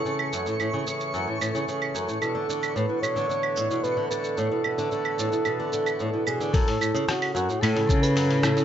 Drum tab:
HH |----------------|----------------|----------------|oo--oo--oo-ooo-o|
SH |x-xxx-xxx-xxx-xx|x-xxx-xxx-xxx-xx|x--xx-xxx-xxx-xx|x-xxx-xxx-xxx-xx|
CL |-x--x-----x--x--|x--x--x--x------|--x--x--x--x--x-|--x--x--x--x--x-|
SD |----------------|----------------|----------------|----r---------r-|
BD |----------------|----------------|----------------|o---------o-----|